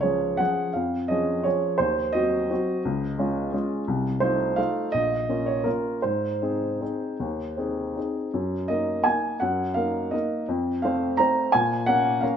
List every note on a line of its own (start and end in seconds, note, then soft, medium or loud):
0.00 0.42 C#2 soft
0.00 0.36 F3 soft
0.00 0.36 C#4 soft
0.00 0.36 G#4 soft
0.00 0.39 C#5 medium
0.37 0.72 F3 soft
0.37 0.72 C#4 soft
0.37 0.72 G#4 soft
0.37 0.74 F#5 medium
0.73 1.09 F2 soft
0.73 1.09 F5 medium
1.08 1.42 F3 soft
1.08 1.42 C#4 soft
1.08 1.42 G#4 soft
1.08 1.44 D#5 medium
1.44 1.76 F3 soft
1.44 1.77 C#4 soft
1.44 1.77 G#4 soft
1.44 1.79 C#5 medium
1.78 2.13 D#2 soft
1.78 2.14 C5 medium
2.13 2.47 F#3 soft
2.13 2.47 C4 soft
2.13 2.47 F#4 soft
2.13 3.69 D#5 medium
2.50 2.82 F#3 soft
2.50 2.82 C4 soft
2.50 2.82 F#4 soft
2.85 3.18 C#2 soft
3.18 3.49 G#3 soft
3.18 3.50 C#4 soft
3.18 3.50 F4 soft
3.52 3.83 G#3 soft
3.52 3.84 C#4 soft
3.52 3.84 F4 soft
3.88 4.21 C2 medium
4.20 4.54 A3 soft
4.20 4.55 D#4 soft
4.20 4.55 F4 soft
4.20 4.57 C5 medium
4.56 4.90 A3 soft
4.56 4.90 D#4 soft
4.56 4.90 F4 soft
4.56 4.92 F5 medium
4.92 5.28 A#1 soft
4.92 5.46 D#5 medium
5.29 5.62 A#3 soft
5.29 5.62 C#4 soft
5.29 5.63 F4 soft
5.46 5.65 C#5 medium
5.64 6.00 A#3 soft
5.64 6.00 C#4 soft
5.64 6.00 F4 soft
5.64 6.03 A#4 medium
6.02 6.41 G#2 soft
6.02 8.15 C5 medium
6.42 6.77 C4 soft
6.42 6.78 D#4 soft
6.42 6.78 G#4 soft
6.81 7.16 C4 soft
6.81 7.16 D#4 soft
6.81 7.16 G#4 soft
7.20 7.57 D#2 soft
7.57 7.92 C4 soft
7.57 7.93 D#4 soft
7.57 7.93 G#4 soft
7.97 8.30 C4 soft
7.97 8.30 D#4 soft
7.97 8.30 G#4 soft
8.34 8.68 F#2 soft
8.68 9.02 A#3 soft
8.68 9.02 D#4 soft
8.68 9.02 A#4 soft
8.68 9.05 D#5 medium
9.04 9.38 A#3 soft
9.04 9.38 D#4 soft
9.04 9.38 A#4 soft
9.04 9.40 G#5 medium
9.40 9.75 F#2 soft
9.40 9.76 F#5 medium
9.74 10.09 A#3 soft
9.74 10.10 D#4 soft
9.74 10.10 A#4 soft
9.74 10.12 F5 medium
10.11 10.45 A#3 soft
10.11 10.45 D#4 soft
10.11 10.46 A#4 soft
10.11 10.48 D#5 medium
10.48 10.83 F2 medium
10.82 11.15 A3 soft
10.82 11.16 C4 soft
10.82 11.16 C5 soft
10.82 11.18 F5 medium
11.17 11.50 A3 soft
11.17 11.51 C4 soft
11.17 11.51 C5 soft
11.17 11.53 A#5 medium
11.52 11.87 A#2 medium
11.52 11.87 G#5 medium
11.86 12.19 A#3 soft
11.86 12.19 C#4 soft
11.86 12.19 A#4 soft
11.86 12.22 F#5 medium
12.21 12.37 A#3 soft
12.21 12.37 C#4 soft
12.21 12.37 A#4 soft
12.21 12.37 F5 medium